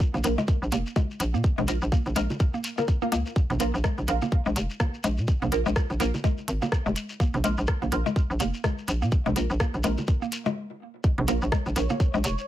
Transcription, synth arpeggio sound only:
0.14 0.18 A#3 medium
0.38 0.41 G#3 loud
0.72 0.78 A#3 medium
0.96 1.00 G#3 loud
1.34 1.38 A#3 medium
1.58 1.61 G#3 loud
1.92 1.98 A#3 medium
2.16 2.20 G#3 medium
2.54 2.58 A#3 medium
2.78 2.82 A#3 medium
3.02 3.06 A#3 loud
3.12 3.21 A#3 loud
3.60 3.66 A#3 medium
3.84 3.88 G#3 loud
4.22 4.26 A#3 medium
4.46 4.49 G#3 loud
4.80 4.86 A#3 medium
5.04 5.08 G#3 loud
5.42 5.46 A#3 medium
5.66 5.69 G#3 loud
6.00 6.06 A#3 medium
6.24 6.28 G#3 loud
6.62 6.66 A#3 medium
6.86 6.89 G#3 loud
7.20 7.26 A#3 medium
7.44 7.48 G#3 loud
7.82 7.86 A#3 medium
8.06 8.09 G#3 loud
8.40 8.46 A#3 medium
8.64 8.68 G#3 loud
9.02 9.06 A#3 medium
9.26 9.29 G#3 loud
9.60 9.66 A#3 medium
9.84 9.88 G#3 loud
10.22 10.26 A#3 medium
10.46 10.49 G#3 loud
11.28 11.34 A#3 medium
11.52 11.56 G#3 loud
11.90 11.94 A#3 medium
12.14 12.17 G#3 loud

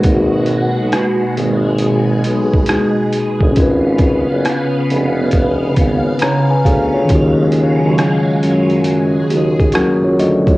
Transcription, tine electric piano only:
0.00 2.62 G#3 medium
0.00 3.59 A#3 medium
0.00 2.64 D#4 medium
0.00 2.65 F#4 medium
0.00 2.67 B4 medium
2.66 3.56 G#3 medium
2.66 3.56 D#4 medium
2.66 3.57 F#4 soft
2.71 3.58 G#4 medium
3.52 6.59 C#4 medium
3.57 6.18 F4 medium
3.62 6.20 B4 medium
6.22 6.50 C#5 medium
6.22 6.49 A#5 medium
6.51 6.65 B4 medium
6.51 6.65 G#5 medium
6.65 6.93 G#4 medium
6.65 6.93 F5 medium
6.94 7.08 F4 medium
6.94 7.36 C#5 medium
7.05 9.24 D#3 medium
7.05 9.25 C#4 medium
7.10 9.26 F4 medium
7.10 9.28 F#4 medium
7.15 9.29 G#4 medium
9.31 9.58 A#3 soft
9.31 9.58 F#4 medium
9.60 9.74 G#4 medium
9.74 10.57 F#3 medium
9.74 10.03 C#4 medium
9.74 10.19 F#4 loud
9.74 10.02 A#4 medium
10.04 10.18 F4 medium
10.04 10.18 C#5 medium
10.19 10.47 F#4 medium
10.19 10.46 D#5 medium
10.48 10.57 F4 soft
10.48 10.57 C#5 medium

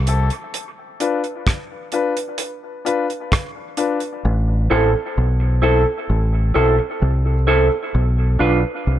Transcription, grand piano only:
0.07 0.27 C4 medium
0.07 0.27 E4 medium
0.07 0.27 A4 loud
1.00 1.19 D4 medium
1.00 1.20 F4 medium
1.00 1.20 B4 medium
1.93 2.12 D4 medium
1.93 2.12 F4 medium
1.93 2.12 B4 medium
2.85 3.04 D4 medium
2.85 3.04 F4 medium
2.85 3.05 B4 loud
3.77 3.97 D4 medium
3.77 3.97 F4 medium
3.77 3.97 B4 medium
4.70 4.89 C4 medium
4.70 4.89 E4 medium
4.70 4.90 A4 medium
5.62 5.81 C4 medium
5.62 5.82 E4 medium
5.62 5.82 A4 loud
6.54 6.74 C4 medium
6.54 6.74 E4 medium
6.54 6.74 A4 loud
7.25 7.34 E4 soft
7.25 7.34 A4 soft
7.47 7.66 C4 medium
7.47 7.66 E4 medium
7.47 7.67 A4 medium
8.39 8.59 D4 medium
8.39 8.59 F4 medium
8.39 8.59 B4 medium

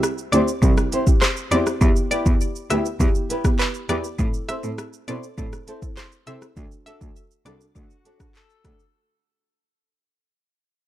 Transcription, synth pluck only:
0.32 0.43 D5 medium
1.21 1.32 C5 medium
1.52 1.62 D5 medium
2.11 2.22 D5 medium
2.70 2.81 E5 medium
3.59 3.70 B4 medium
3.89 4.00 D5 medium
4.49 4.59 E5 medium
5.08 5.18 D5 medium
5.97 6.08 C5 medium
6.27 6.38 E5 medium
6.86 6.97 E5 medium
7.46 7.56 D5 medium

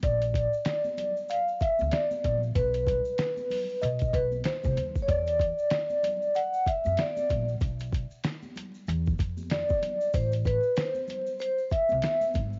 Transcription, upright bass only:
0.03 0.45 A#1 medium
1.81 1.91 D2 medium
2.25 2.51 A#1 medium
2.56 2.98 B1 loud
3.83 4.09 B2 loud
4.14 4.40 B1 medium
4.65 4.75 C2 medium
4.77 5.03 D#2 medium
5.08 5.50 E2 loud
6.86 6.96 F#2 medium
7.31 7.56 A#1 medium
7.62 8.04 B1 medium
8.88 9.14 E2 loud
9.19 9.61 F2 medium
10.14 10.56 A1 medium
11.92 12.02 C2 medium
12.35 12.59 G#1 medium

